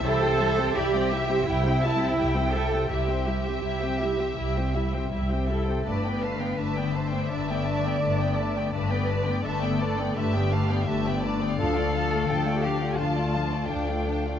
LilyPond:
<<
  \new Staff \with { instrumentName = "Violin section" } { \time 4/4 \key c \major \tempo 4 = 84 c''4 d''8 e''8 g''8 a''8 g''4 | e''2.~ e''8 r8 | d''8 f''8 e''2. | d''4 e''8 d''8 e''8 f''8 e''8 d''8 |
f''4 g''8 f''8 a''4 g''4 | }
  \new Staff \with { instrumentName = "Violin section" } { \time 4/4 \key c \major <g' e''>16 <c'' g''>16 <g' e''>16 <c'' g''>16 <g' e''>16 <c'' g''>16 <g' e''>16 <c'' g''>16 <g' e''>16 <c'' g''>16 <g' e''>16 <c'' g''>16 <g' e''>16 <c'' g''>16 <g' e''>16 <c'' g''>16 | <g' e''>16 <c'' g''>16 <g' e''>16 <c'' g''>16 <g' e''>16 <c'' g''>16 <g' e''>16 <c'' g''>16 <g' e''>16 <c'' g''>16 <g' e''>16 <c'' g''>16 <g' e''>16 <c'' g''>16 <g' e''>16 <c'' g''>16 | <b' a''>16 <d'' g''>16 <b' a''>16 <d'' g''>16 <b' a''>16 <d'' g''>16 <b' a''>16 <d'' g''>16 <b' a''>16 <d'' g''>16 <b' a''>16 <d'' g''>16 <b' a''>16 <d'' g''>16 <b' a''>16 <d'' g''>16 | <b' a''>16 <d'' g''>16 <b' a''>16 <d'' g''>16 <b' a''>16 <d'' g''>16 <b' a''>16 <d'' g''>16 <b' a''>16 <d'' g''>16 <b' a''>16 <d'' g''>16 <b' a''>16 <d'' g''>16 <b' a''>16 <d'' g''>16 |
<f'' a''>16 <d'' f''>16 <f'' a''>16 <d'' f''>16 <f'' a''>16 <d'' f''>16 <f'' a''>16 <d'' f''>16 <f'' a''>16 <d'' f''>16 <f'' a''>16 <d'' f''>16 <f'' a''>16 <d'' f''>16 <f'' a''>16 <d'' f''>16 | }
  \new Staff \with { instrumentName = "Cello section" } { \time 4/4 \key c \major a'4 g'4 e'4. a'8 | g'2. r8 a'8 | b'4. c''8 d''2 | b'4 a'4 g'4. r8 |
a'4. g'8 f'4 d'4 | }
  \new Staff \with { instrumentName = "Harp" } { \time 4/4 \key c \major \tuplet 3/2 { <c c' e'>8 e'8 g8 e'8 g8 e'8 g8 e'8 g8 e'8 g8 e'8 } | \tuplet 3/2 { c8 c'8 g8 e'8 g8 e'8 g8 e'8 g8 e'8 g8 e'8 } | \tuplet 3/2 { g,8 d'8 d8 d'8 d8 d'8 d8 d'8 d8 d'8 d8 d'8 } | \tuplet 3/2 { g,8 b8 d8 d'8 d8 d'8 d8 d'8 d8 d'8 d8 d'8 } |
\tuplet 3/2 { d8 a'8 a8 a'8 a8 a'8 a8 a'8 a8 a'8 a8 a'8 } | }
  \new Staff \with { instrumentName = "Viola section" } { \time 4/4 \key c \major <g e'>16 <c' g'>16 <g e'>16 <c' g'>16 <g e'>16 <c' g'>16 <g e'>16 <c' g'>16 <g e'>16 <c' g'>16 <g e'>16 <c' g'>16 <g e'>16 <c' g'>16 <g e'>16 <c' g'>16 | <g e'>16 <c' g'>16 <g e'>16 <c' g'>16 <g e'>16 <c' g'>16 <g e'>16 <c' g'>16 <g e'>16 <c' g'>16 <g e'>16 <c' g'>16 <g e'>16 <c' g'>16 <g e'>16 <c' g'>16 | <a d'>16 <a b>16 <a d'>16 <a b>16 <a d'>16 <a b>16 <a d'>16 <a b>16 <a d'>16 <a b>16 <a d'>16 <a b>16 <a d'>16 <a b>16 <a d'>16 <a b>16 | <a d'>16 <a b>16 <a d'>16 <a b>16 <a d'>16 <a b>16 <a d'>16 <a b>16 <a d'>16 <a b>16 <a d'>16 <a b>16 <a d'>16 <a b>16 <a d'>16 <a b>16 |
<f d'>16 <a f'>16 <f d'>16 <a f'>16 <f d'>16 <a f'>16 <f d'>16 <a f'>16 <f d'>16 <a f'>16 <f d'>16 <a f'>16 <f d'>16 <a f'>16 <f d'>16 <a f'>16 | }
  \new Staff \with { instrumentName = "Double bass section" } { \clef bass \time 4/4 \key c \major c,4 c,4 c,4 c,4 | c,4 c,4 c,4 c,4 | g,,4 g,,4 g,,4 g,,4 | g,,4 g,,4 g,,4 g,,4 |
d,4 d,4 d,4 d,4 | }
>>